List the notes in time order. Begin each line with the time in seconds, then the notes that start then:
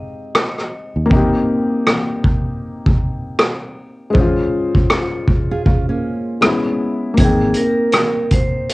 Already playing: G#3 C4 D#4 G4 D#5
0.35 cross-stick
0.58 cross-stick
0.96 D#2
1.06 A#3 C4
1.11 D#4, kick
1.16 G4
1.87 cross-stick
2.24 kick
2.86 kick
3.39 cross-stick
4.10 G#3 C5
4.15 C#4, kick
4.20 F4
4.75 kick
4.90 cross-stick
5.28 kick
5.51 F4 G#4
5.65 C#4 F4, kick
5.89 A#3 C#4
6.41 G#3 B3 C#4, cross-stick
6.46 E4
7.14 G#1 A#3 C4, kick, closed hi-hat
7.20 D#4 G#4
7.24 G5
7.54 A#4, closed hi-hat
7.92 cross-stick, closed hi-hat
8.31 C5, kick, closed hi-hat
8.69 closed hi-hat